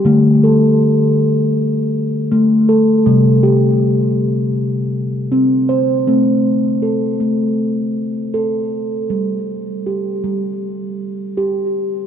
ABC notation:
X:1
M:4/4
L:1/8
Q:"Swing 16ths" 1/4=80
K:Am
V:1 name="Steel tongue drum"
A, A2 z3 A, A | G, G2 z3 C c | C2 A A,2 z A2 | G,2 G G,2 z G2 |]
V:2 name="Steel tongue drum" clef=bass
D,8 | C,8 | A,8 | z8 |]